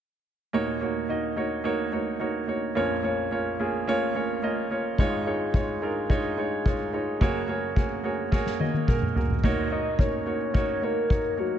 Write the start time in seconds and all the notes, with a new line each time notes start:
0.53 D#2 A#2 A#3 D#4 F#4 C#5
0.81 A#3 D#4 F#4 C#5
1.09 A#3 D#4 F#4 D#5
1.36 A#3 D#4 F#4 C#5
1.64 A#3 D#4 F#4 C#5
1.92 A#3 D#4 F#4 C#5
2.20 A#3 D#4 F#4 C#5
2.47 A#3 D#4 F#4 C#5
2.75 A#1 F2 A#3 C#4 F4 C#5
3.03 A#3 C#4 F4 C#5
3.31 A#3 C#4 F4 C#5
3.60 A#3 C#4 F4 G#4
3.87 A#3 C#4 F4 C#5
4.15 A#3 C#4 F4 C#5
4.43 A#3 C#4 F4 D#5
4.71 A#3 C#4 F4 C#5
4.98 G#1 G#2 G#3 D#4 F4 C#5, kick
5.26 G#3 D#4 F4 C#5
5.54 G#3 D#4 F4 C#5, kick
5.82 G#3 D#4 F4 A#4
6.10 G#3 D#4 F4 C#5, kick
6.37 G#3 D#4 F4 C#5
6.65 G#3 D#4 F4 C#5, kick
6.93 G#3 D#4 F4 C#5
7.21 F#2 C#3 A#3 F#4 G#4 C#5, kick
7.48 A#3 F#4 G#4 C#5
7.76 A#3 F#4 G#4 C#5, kick
8.04 A#3 F#4 G#4 C#5
8.32 A#3 F#4 G#4 C#5, kick, snare
8.46 snare
8.59 A#3 F#4 G#4 D#5, high tom
8.74 high tom
8.87 A#3 F#4 G#4 A#4, kick, mid tom
9.02 mid tom
9.15 A#3 F#4 G#4 A#4, floor tom
9.30 floor tom
9.44 A#2 A#3 D#4 F#4 C#5, kick, crash
9.71 A#3 D#4 F#4 C#5 D#5
9.98 A#3 D#4 F#4 A#4 C#5, kick
10.26 A#3 D#4 F#4 C#5
10.54 A#3 D#4 F#4 C#5, kick
10.82 A#3 D#4 F#4 A#4 C#5
11.10 A#3 D#4 F#4 C#5, kick
11.37 A#3 D#4 F#4 C#5